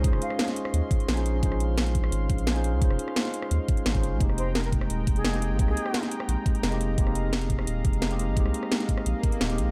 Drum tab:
HH |x-x-xxx-x-xxxxx-|x-x-xxx-x-xxxxx-|x-x-xxx-x-xxxxx-|x-x-xxx-x-xxxxx-|
SD |-r-roo-r----o---|-r--o--r----o---|-r-roo-r----o---|-r--o--r----o---|
BD |o---------o-----|o-----o---o-----|o---------o--o--|o-----o---o-----|

HH |x-x-xxx-x-xxxxx-|x-x-xxx-x-xxxxx-|x-x-xxx-x-xxxxx-|
SD |-r-roo-r----o---|-r--o--r----o---|-r-roo-r----o---|
BD |o---------o-----|o-----o---o-----|o-----o---o-----|